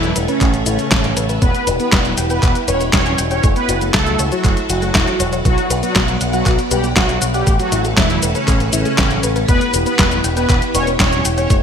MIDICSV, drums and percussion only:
0, 0, Header, 1, 2, 480
1, 0, Start_track
1, 0, Tempo, 504202
1, 1351, Time_signature, 4, 2, 24, 8
1, 11071, End_track
2, 0, Start_track
2, 0, Title_t, "Drums"
2, 30, Note_on_c, 9, 42, 41
2, 30, Note_on_c, 9, 69, 20
2, 126, Note_off_c, 9, 42, 0
2, 126, Note_off_c, 9, 69, 0
2, 150, Note_on_c, 9, 42, 95
2, 150, Note_on_c, 9, 69, 68
2, 245, Note_off_c, 9, 42, 0
2, 245, Note_off_c, 9, 69, 0
2, 270, Note_on_c, 9, 42, 40
2, 270, Note_on_c, 9, 69, 27
2, 365, Note_off_c, 9, 42, 0
2, 365, Note_off_c, 9, 69, 0
2, 390, Note_on_c, 9, 39, 59
2, 390, Note_on_c, 9, 42, 69
2, 390, Note_on_c, 9, 69, 39
2, 391, Note_on_c, 9, 36, 122
2, 485, Note_off_c, 9, 39, 0
2, 485, Note_off_c, 9, 42, 0
2, 485, Note_off_c, 9, 69, 0
2, 487, Note_off_c, 9, 36, 0
2, 510, Note_on_c, 9, 42, 39
2, 510, Note_on_c, 9, 69, 19
2, 606, Note_off_c, 9, 42, 0
2, 606, Note_off_c, 9, 69, 0
2, 630, Note_on_c, 9, 42, 99
2, 630, Note_on_c, 9, 69, 68
2, 726, Note_off_c, 9, 42, 0
2, 726, Note_off_c, 9, 69, 0
2, 750, Note_on_c, 9, 42, 36
2, 750, Note_on_c, 9, 69, 26
2, 846, Note_off_c, 9, 42, 0
2, 846, Note_off_c, 9, 69, 0
2, 871, Note_on_c, 9, 38, 126
2, 871, Note_on_c, 9, 39, 99
2, 871, Note_on_c, 9, 42, 70
2, 871, Note_on_c, 9, 69, 38
2, 872, Note_on_c, 9, 36, 123
2, 966, Note_off_c, 9, 38, 0
2, 966, Note_off_c, 9, 39, 0
2, 966, Note_off_c, 9, 42, 0
2, 966, Note_off_c, 9, 69, 0
2, 967, Note_off_c, 9, 36, 0
2, 991, Note_on_c, 9, 42, 41
2, 991, Note_on_c, 9, 69, 20
2, 1086, Note_off_c, 9, 42, 0
2, 1086, Note_off_c, 9, 69, 0
2, 1111, Note_on_c, 9, 42, 103
2, 1111, Note_on_c, 9, 69, 72
2, 1206, Note_off_c, 9, 42, 0
2, 1206, Note_off_c, 9, 69, 0
2, 1231, Note_on_c, 9, 42, 41
2, 1231, Note_on_c, 9, 69, 29
2, 1326, Note_off_c, 9, 42, 0
2, 1326, Note_off_c, 9, 69, 0
2, 1351, Note_on_c, 9, 42, 67
2, 1351, Note_on_c, 9, 69, 37
2, 1352, Note_on_c, 9, 36, 127
2, 1446, Note_off_c, 9, 42, 0
2, 1446, Note_off_c, 9, 69, 0
2, 1447, Note_off_c, 9, 36, 0
2, 1471, Note_on_c, 9, 42, 38
2, 1471, Note_on_c, 9, 69, 18
2, 1567, Note_off_c, 9, 42, 0
2, 1567, Note_off_c, 9, 69, 0
2, 1591, Note_on_c, 9, 42, 92
2, 1591, Note_on_c, 9, 69, 67
2, 1686, Note_off_c, 9, 42, 0
2, 1686, Note_off_c, 9, 69, 0
2, 1711, Note_on_c, 9, 42, 38
2, 1711, Note_on_c, 9, 69, 29
2, 1806, Note_off_c, 9, 42, 0
2, 1806, Note_off_c, 9, 69, 0
2, 1831, Note_on_c, 9, 38, 127
2, 1831, Note_on_c, 9, 39, 94
2, 1831, Note_on_c, 9, 42, 66
2, 1831, Note_on_c, 9, 69, 38
2, 1832, Note_on_c, 9, 36, 127
2, 1926, Note_off_c, 9, 38, 0
2, 1926, Note_off_c, 9, 39, 0
2, 1926, Note_off_c, 9, 42, 0
2, 1926, Note_off_c, 9, 69, 0
2, 1927, Note_off_c, 9, 36, 0
2, 1951, Note_on_c, 9, 42, 40
2, 1951, Note_on_c, 9, 69, 19
2, 2046, Note_off_c, 9, 42, 0
2, 2046, Note_off_c, 9, 69, 0
2, 2071, Note_on_c, 9, 42, 87
2, 2071, Note_on_c, 9, 69, 63
2, 2166, Note_off_c, 9, 42, 0
2, 2166, Note_off_c, 9, 69, 0
2, 2191, Note_on_c, 9, 42, 39
2, 2191, Note_on_c, 9, 69, 30
2, 2286, Note_off_c, 9, 42, 0
2, 2286, Note_off_c, 9, 69, 0
2, 2311, Note_on_c, 9, 39, 58
2, 2311, Note_on_c, 9, 42, 67
2, 2311, Note_on_c, 9, 69, 41
2, 2312, Note_on_c, 9, 36, 122
2, 2406, Note_off_c, 9, 39, 0
2, 2406, Note_off_c, 9, 42, 0
2, 2406, Note_off_c, 9, 69, 0
2, 2407, Note_off_c, 9, 36, 0
2, 2431, Note_on_c, 9, 42, 39
2, 2431, Note_on_c, 9, 69, 19
2, 2526, Note_off_c, 9, 42, 0
2, 2526, Note_off_c, 9, 69, 0
2, 2551, Note_on_c, 9, 42, 94
2, 2551, Note_on_c, 9, 69, 69
2, 2646, Note_off_c, 9, 42, 0
2, 2646, Note_off_c, 9, 69, 0
2, 2671, Note_on_c, 9, 42, 36
2, 2671, Note_on_c, 9, 69, 28
2, 2766, Note_off_c, 9, 42, 0
2, 2766, Note_off_c, 9, 69, 0
2, 2791, Note_on_c, 9, 36, 127
2, 2791, Note_on_c, 9, 38, 127
2, 2791, Note_on_c, 9, 39, 98
2, 2791, Note_on_c, 9, 42, 67
2, 2791, Note_on_c, 9, 69, 39
2, 2886, Note_off_c, 9, 36, 0
2, 2886, Note_off_c, 9, 38, 0
2, 2886, Note_off_c, 9, 39, 0
2, 2886, Note_off_c, 9, 42, 0
2, 2886, Note_off_c, 9, 69, 0
2, 2911, Note_on_c, 9, 42, 39
2, 2911, Note_on_c, 9, 69, 19
2, 3006, Note_off_c, 9, 42, 0
2, 3006, Note_off_c, 9, 69, 0
2, 3031, Note_on_c, 9, 42, 94
2, 3031, Note_on_c, 9, 69, 69
2, 3126, Note_off_c, 9, 42, 0
2, 3126, Note_off_c, 9, 69, 0
2, 3151, Note_on_c, 9, 42, 39
2, 3151, Note_on_c, 9, 69, 30
2, 3246, Note_off_c, 9, 42, 0
2, 3246, Note_off_c, 9, 69, 0
2, 3270, Note_on_c, 9, 42, 66
2, 3270, Note_on_c, 9, 69, 41
2, 3271, Note_on_c, 9, 36, 127
2, 3366, Note_off_c, 9, 42, 0
2, 3366, Note_off_c, 9, 69, 0
2, 3367, Note_off_c, 9, 36, 0
2, 3390, Note_on_c, 9, 42, 39
2, 3390, Note_on_c, 9, 69, 19
2, 3486, Note_off_c, 9, 42, 0
2, 3486, Note_off_c, 9, 69, 0
2, 3511, Note_on_c, 9, 42, 92
2, 3511, Note_on_c, 9, 69, 68
2, 3606, Note_off_c, 9, 42, 0
2, 3606, Note_off_c, 9, 69, 0
2, 3631, Note_on_c, 9, 42, 39
2, 3631, Note_on_c, 9, 69, 28
2, 3726, Note_off_c, 9, 42, 0
2, 3726, Note_off_c, 9, 69, 0
2, 3750, Note_on_c, 9, 38, 125
2, 3750, Note_on_c, 9, 39, 92
2, 3750, Note_on_c, 9, 42, 65
2, 3750, Note_on_c, 9, 69, 41
2, 3751, Note_on_c, 9, 36, 123
2, 3845, Note_off_c, 9, 38, 0
2, 3845, Note_off_c, 9, 39, 0
2, 3845, Note_off_c, 9, 42, 0
2, 3845, Note_off_c, 9, 69, 0
2, 3846, Note_off_c, 9, 36, 0
2, 3870, Note_on_c, 9, 42, 38
2, 3870, Note_on_c, 9, 69, 20
2, 3965, Note_off_c, 9, 42, 0
2, 3965, Note_off_c, 9, 69, 0
2, 3990, Note_on_c, 9, 42, 89
2, 3990, Note_on_c, 9, 69, 67
2, 4086, Note_off_c, 9, 42, 0
2, 4086, Note_off_c, 9, 69, 0
2, 4110, Note_on_c, 9, 42, 37
2, 4110, Note_on_c, 9, 69, 29
2, 4206, Note_off_c, 9, 42, 0
2, 4206, Note_off_c, 9, 69, 0
2, 4230, Note_on_c, 9, 39, 53
2, 4230, Note_on_c, 9, 42, 66
2, 4230, Note_on_c, 9, 69, 38
2, 4231, Note_on_c, 9, 36, 122
2, 4325, Note_off_c, 9, 39, 0
2, 4325, Note_off_c, 9, 42, 0
2, 4325, Note_off_c, 9, 69, 0
2, 4326, Note_off_c, 9, 36, 0
2, 4350, Note_on_c, 9, 42, 38
2, 4350, Note_on_c, 9, 69, 19
2, 4445, Note_off_c, 9, 42, 0
2, 4445, Note_off_c, 9, 69, 0
2, 4470, Note_on_c, 9, 42, 91
2, 4470, Note_on_c, 9, 69, 72
2, 4565, Note_off_c, 9, 42, 0
2, 4565, Note_off_c, 9, 69, 0
2, 4590, Note_on_c, 9, 42, 35
2, 4590, Note_on_c, 9, 69, 28
2, 4685, Note_off_c, 9, 42, 0
2, 4685, Note_off_c, 9, 69, 0
2, 4710, Note_on_c, 9, 38, 127
2, 4710, Note_on_c, 9, 39, 96
2, 4710, Note_on_c, 9, 42, 65
2, 4710, Note_on_c, 9, 69, 41
2, 4711, Note_on_c, 9, 36, 125
2, 4806, Note_off_c, 9, 36, 0
2, 4806, Note_off_c, 9, 38, 0
2, 4806, Note_off_c, 9, 39, 0
2, 4806, Note_off_c, 9, 42, 0
2, 4806, Note_off_c, 9, 69, 0
2, 4830, Note_on_c, 9, 42, 39
2, 4830, Note_on_c, 9, 69, 19
2, 4925, Note_off_c, 9, 42, 0
2, 4925, Note_off_c, 9, 69, 0
2, 4950, Note_on_c, 9, 42, 95
2, 4950, Note_on_c, 9, 69, 70
2, 5045, Note_off_c, 9, 42, 0
2, 5045, Note_off_c, 9, 69, 0
2, 5071, Note_on_c, 9, 42, 39
2, 5071, Note_on_c, 9, 69, 29
2, 5166, Note_off_c, 9, 42, 0
2, 5166, Note_off_c, 9, 69, 0
2, 5190, Note_on_c, 9, 42, 65
2, 5190, Note_on_c, 9, 69, 41
2, 5191, Note_on_c, 9, 36, 125
2, 5286, Note_off_c, 9, 36, 0
2, 5286, Note_off_c, 9, 42, 0
2, 5286, Note_off_c, 9, 69, 0
2, 5310, Note_on_c, 9, 42, 38
2, 5310, Note_on_c, 9, 69, 20
2, 5405, Note_off_c, 9, 42, 0
2, 5405, Note_off_c, 9, 69, 0
2, 5430, Note_on_c, 9, 42, 93
2, 5430, Note_on_c, 9, 69, 72
2, 5526, Note_off_c, 9, 42, 0
2, 5526, Note_off_c, 9, 69, 0
2, 5550, Note_on_c, 9, 42, 39
2, 5550, Note_on_c, 9, 69, 30
2, 5646, Note_off_c, 9, 42, 0
2, 5646, Note_off_c, 9, 69, 0
2, 5670, Note_on_c, 9, 38, 118
2, 5670, Note_on_c, 9, 39, 87
2, 5670, Note_on_c, 9, 42, 64
2, 5670, Note_on_c, 9, 69, 40
2, 5671, Note_on_c, 9, 36, 124
2, 5765, Note_off_c, 9, 38, 0
2, 5765, Note_off_c, 9, 39, 0
2, 5765, Note_off_c, 9, 42, 0
2, 5765, Note_off_c, 9, 69, 0
2, 5766, Note_off_c, 9, 36, 0
2, 5790, Note_on_c, 9, 42, 39
2, 5790, Note_on_c, 9, 69, 21
2, 5885, Note_off_c, 9, 42, 0
2, 5885, Note_off_c, 9, 69, 0
2, 5910, Note_on_c, 9, 42, 86
2, 5910, Note_on_c, 9, 69, 65
2, 6006, Note_off_c, 9, 42, 0
2, 6006, Note_off_c, 9, 69, 0
2, 6030, Note_on_c, 9, 42, 37
2, 6030, Note_on_c, 9, 69, 30
2, 6125, Note_off_c, 9, 42, 0
2, 6125, Note_off_c, 9, 69, 0
2, 6150, Note_on_c, 9, 39, 53
2, 6150, Note_on_c, 9, 42, 69
2, 6150, Note_on_c, 9, 69, 42
2, 6151, Note_on_c, 9, 36, 118
2, 6245, Note_off_c, 9, 39, 0
2, 6245, Note_off_c, 9, 42, 0
2, 6245, Note_off_c, 9, 69, 0
2, 6246, Note_off_c, 9, 36, 0
2, 6270, Note_on_c, 9, 42, 38
2, 6270, Note_on_c, 9, 69, 20
2, 6365, Note_off_c, 9, 42, 0
2, 6365, Note_off_c, 9, 69, 0
2, 6390, Note_on_c, 9, 42, 89
2, 6390, Note_on_c, 9, 69, 69
2, 6485, Note_off_c, 9, 42, 0
2, 6485, Note_off_c, 9, 69, 0
2, 6510, Note_on_c, 9, 42, 35
2, 6510, Note_on_c, 9, 69, 27
2, 6605, Note_off_c, 9, 42, 0
2, 6605, Note_off_c, 9, 69, 0
2, 6630, Note_on_c, 9, 38, 120
2, 6630, Note_on_c, 9, 39, 92
2, 6630, Note_on_c, 9, 42, 66
2, 6630, Note_on_c, 9, 69, 42
2, 6631, Note_on_c, 9, 36, 118
2, 6726, Note_off_c, 9, 36, 0
2, 6726, Note_off_c, 9, 38, 0
2, 6726, Note_off_c, 9, 39, 0
2, 6726, Note_off_c, 9, 42, 0
2, 6726, Note_off_c, 9, 69, 0
2, 6751, Note_on_c, 9, 42, 40
2, 6751, Note_on_c, 9, 69, 21
2, 6846, Note_off_c, 9, 42, 0
2, 6846, Note_off_c, 9, 69, 0
2, 6871, Note_on_c, 9, 42, 93
2, 6871, Note_on_c, 9, 69, 73
2, 6966, Note_off_c, 9, 42, 0
2, 6966, Note_off_c, 9, 69, 0
2, 6991, Note_on_c, 9, 42, 39
2, 6991, Note_on_c, 9, 69, 31
2, 7086, Note_off_c, 9, 42, 0
2, 7086, Note_off_c, 9, 69, 0
2, 7111, Note_on_c, 9, 36, 117
2, 7111, Note_on_c, 9, 42, 67
2, 7111, Note_on_c, 9, 69, 43
2, 7206, Note_off_c, 9, 36, 0
2, 7206, Note_off_c, 9, 42, 0
2, 7206, Note_off_c, 9, 69, 0
2, 7231, Note_on_c, 9, 42, 41
2, 7231, Note_on_c, 9, 69, 20
2, 7326, Note_off_c, 9, 42, 0
2, 7326, Note_off_c, 9, 69, 0
2, 7350, Note_on_c, 9, 42, 92
2, 7350, Note_on_c, 9, 69, 74
2, 7445, Note_off_c, 9, 42, 0
2, 7445, Note_off_c, 9, 69, 0
2, 7471, Note_on_c, 9, 42, 40
2, 7471, Note_on_c, 9, 69, 31
2, 7566, Note_off_c, 9, 42, 0
2, 7566, Note_off_c, 9, 69, 0
2, 7590, Note_on_c, 9, 36, 116
2, 7591, Note_on_c, 9, 38, 119
2, 7591, Note_on_c, 9, 39, 89
2, 7591, Note_on_c, 9, 42, 64
2, 7591, Note_on_c, 9, 69, 42
2, 7686, Note_off_c, 9, 36, 0
2, 7686, Note_off_c, 9, 38, 0
2, 7686, Note_off_c, 9, 39, 0
2, 7686, Note_off_c, 9, 42, 0
2, 7686, Note_off_c, 9, 69, 0
2, 7710, Note_on_c, 9, 42, 40
2, 7710, Note_on_c, 9, 69, 21
2, 7806, Note_off_c, 9, 42, 0
2, 7806, Note_off_c, 9, 69, 0
2, 7830, Note_on_c, 9, 42, 92
2, 7830, Note_on_c, 9, 69, 72
2, 7926, Note_off_c, 9, 42, 0
2, 7926, Note_off_c, 9, 69, 0
2, 7950, Note_on_c, 9, 42, 41
2, 7950, Note_on_c, 9, 69, 31
2, 8046, Note_off_c, 9, 42, 0
2, 8046, Note_off_c, 9, 69, 0
2, 8070, Note_on_c, 9, 36, 114
2, 8070, Note_on_c, 9, 39, 51
2, 8070, Note_on_c, 9, 42, 70
2, 8070, Note_on_c, 9, 69, 44
2, 8166, Note_off_c, 9, 36, 0
2, 8166, Note_off_c, 9, 39, 0
2, 8166, Note_off_c, 9, 42, 0
2, 8166, Note_off_c, 9, 69, 0
2, 8190, Note_on_c, 9, 42, 40
2, 8190, Note_on_c, 9, 69, 21
2, 8285, Note_off_c, 9, 42, 0
2, 8285, Note_off_c, 9, 69, 0
2, 8310, Note_on_c, 9, 42, 95
2, 8310, Note_on_c, 9, 69, 76
2, 8405, Note_off_c, 9, 42, 0
2, 8405, Note_off_c, 9, 69, 0
2, 8430, Note_on_c, 9, 42, 37
2, 8430, Note_on_c, 9, 69, 29
2, 8525, Note_off_c, 9, 42, 0
2, 8525, Note_off_c, 9, 69, 0
2, 8550, Note_on_c, 9, 36, 118
2, 8550, Note_on_c, 9, 38, 115
2, 8550, Note_on_c, 9, 39, 89
2, 8550, Note_on_c, 9, 42, 69
2, 8550, Note_on_c, 9, 69, 43
2, 8645, Note_off_c, 9, 38, 0
2, 8645, Note_off_c, 9, 39, 0
2, 8645, Note_off_c, 9, 42, 0
2, 8645, Note_off_c, 9, 69, 0
2, 8646, Note_off_c, 9, 36, 0
2, 8669, Note_on_c, 9, 42, 40
2, 8669, Note_on_c, 9, 69, 21
2, 8764, Note_off_c, 9, 42, 0
2, 8764, Note_off_c, 9, 69, 0
2, 8789, Note_on_c, 9, 42, 99
2, 8789, Note_on_c, 9, 69, 76
2, 8885, Note_off_c, 9, 42, 0
2, 8885, Note_off_c, 9, 69, 0
2, 8910, Note_on_c, 9, 42, 40
2, 8910, Note_on_c, 9, 69, 33
2, 9005, Note_off_c, 9, 42, 0
2, 9005, Note_off_c, 9, 69, 0
2, 9030, Note_on_c, 9, 36, 119
2, 9030, Note_on_c, 9, 42, 70
2, 9030, Note_on_c, 9, 69, 43
2, 9125, Note_off_c, 9, 42, 0
2, 9125, Note_off_c, 9, 69, 0
2, 9126, Note_off_c, 9, 36, 0
2, 9150, Note_on_c, 9, 42, 40
2, 9150, Note_on_c, 9, 69, 20
2, 9245, Note_off_c, 9, 42, 0
2, 9245, Note_off_c, 9, 69, 0
2, 9269, Note_on_c, 9, 42, 97
2, 9269, Note_on_c, 9, 69, 71
2, 9365, Note_off_c, 9, 42, 0
2, 9365, Note_off_c, 9, 69, 0
2, 9390, Note_on_c, 9, 42, 41
2, 9390, Note_on_c, 9, 69, 33
2, 9485, Note_off_c, 9, 42, 0
2, 9485, Note_off_c, 9, 69, 0
2, 9509, Note_on_c, 9, 38, 115
2, 9509, Note_on_c, 9, 39, 92
2, 9509, Note_on_c, 9, 42, 69
2, 9509, Note_on_c, 9, 69, 42
2, 9510, Note_on_c, 9, 36, 111
2, 9605, Note_off_c, 9, 38, 0
2, 9605, Note_off_c, 9, 39, 0
2, 9605, Note_off_c, 9, 42, 0
2, 9605, Note_off_c, 9, 69, 0
2, 9606, Note_off_c, 9, 36, 0
2, 9630, Note_on_c, 9, 42, 42
2, 9630, Note_on_c, 9, 69, 22
2, 9725, Note_off_c, 9, 42, 0
2, 9725, Note_off_c, 9, 69, 0
2, 9750, Note_on_c, 9, 42, 91
2, 9750, Note_on_c, 9, 69, 70
2, 9845, Note_off_c, 9, 42, 0
2, 9845, Note_off_c, 9, 69, 0
2, 9870, Note_on_c, 9, 42, 43
2, 9870, Note_on_c, 9, 69, 32
2, 9965, Note_off_c, 9, 42, 0
2, 9965, Note_off_c, 9, 69, 0
2, 9990, Note_on_c, 9, 39, 55
2, 9990, Note_on_c, 9, 42, 74
2, 9990, Note_on_c, 9, 69, 45
2, 9991, Note_on_c, 9, 36, 114
2, 10085, Note_off_c, 9, 39, 0
2, 10085, Note_off_c, 9, 42, 0
2, 10085, Note_off_c, 9, 69, 0
2, 10086, Note_off_c, 9, 36, 0
2, 10111, Note_on_c, 9, 42, 42
2, 10111, Note_on_c, 9, 69, 21
2, 10206, Note_off_c, 9, 42, 0
2, 10206, Note_off_c, 9, 69, 0
2, 10230, Note_on_c, 9, 42, 98
2, 10230, Note_on_c, 9, 69, 76
2, 10326, Note_off_c, 9, 42, 0
2, 10326, Note_off_c, 9, 69, 0
2, 10351, Note_on_c, 9, 42, 38
2, 10351, Note_on_c, 9, 69, 30
2, 10446, Note_off_c, 9, 42, 0
2, 10446, Note_off_c, 9, 69, 0
2, 10471, Note_on_c, 9, 36, 123
2, 10471, Note_on_c, 9, 38, 113
2, 10471, Note_on_c, 9, 39, 94
2, 10471, Note_on_c, 9, 42, 71
2, 10471, Note_on_c, 9, 69, 44
2, 10566, Note_off_c, 9, 36, 0
2, 10566, Note_off_c, 9, 38, 0
2, 10566, Note_off_c, 9, 39, 0
2, 10566, Note_off_c, 9, 42, 0
2, 10566, Note_off_c, 9, 69, 0
2, 10591, Note_on_c, 9, 42, 42
2, 10591, Note_on_c, 9, 69, 21
2, 10686, Note_off_c, 9, 42, 0
2, 10686, Note_off_c, 9, 69, 0
2, 10711, Note_on_c, 9, 42, 101
2, 10711, Note_on_c, 9, 69, 75
2, 10806, Note_off_c, 9, 42, 0
2, 10806, Note_off_c, 9, 69, 0
2, 10831, Note_on_c, 9, 42, 42
2, 10831, Note_on_c, 9, 69, 32
2, 10926, Note_off_c, 9, 42, 0
2, 10926, Note_off_c, 9, 69, 0
2, 10951, Note_on_c, 9, 36, 118
2, 10951, Note_on_c, 9, 42, 74
2, 10951, Note_on_c, 9, 69, 42
2, 11046, Note_off_c, 9, 36, 0
2, 11046, Note_off_c, 9, 42, 0
2, 11046, Note_off_c, 9, 69, 0
2, 11071, End_track
0, 0, End_of_file